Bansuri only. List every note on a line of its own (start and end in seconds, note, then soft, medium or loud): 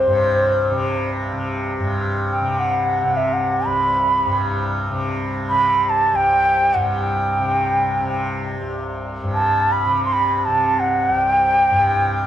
0.00 1.11 C5 medium
2.31 2.52 G5 medium
2.52 2.61 G5 medium
2.59 3.18 F#5 medium
3.17 3.35 E5 medium
3.33 3.68 F#5 medium
3.66 4.73 B5 medium
5.49 5.91 B5 medium
5.89 6.17 A5 medium
6.16 6.75 G5 loud
6.74 7.02 F#5 medium
7.01 8.48 G5 medium
9.34 9.74 A5 medium
9.72 10.04 B5 medium
10.05 10.14 C6 medium
10.12 10.38 B5 medium
10.38 10.47 B5 medium
10.45 10.81 A5 medium
10.80 11.18 F#5 medium
11.18 12.27 G5 medium